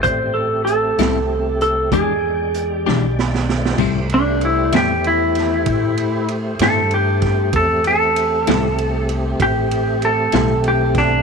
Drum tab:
CC |------------------------|x-----------------------|------------------------|
RD |------------------------|--x-x-x-x-x-x-x-x-x-x-x-|x-x-x-x-x-x-x-x-x-x-x-x-|
HH |x---x-x---x-x---x-------|------------------------|------------------------|
SD |------o-----------o-oooo|------o---o-------o---o-|------o-----------o---o-|
BD |o-----------o-----------|o-----------o---------o-|o-----------o---------o-|